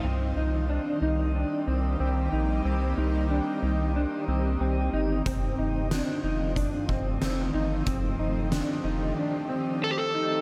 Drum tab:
HH |--------|--------|x-x-x-x-|x-x-----|
SD |--------|--------|--o---o-|--o-----|
BD |--------|--------|o---oo--|o-------|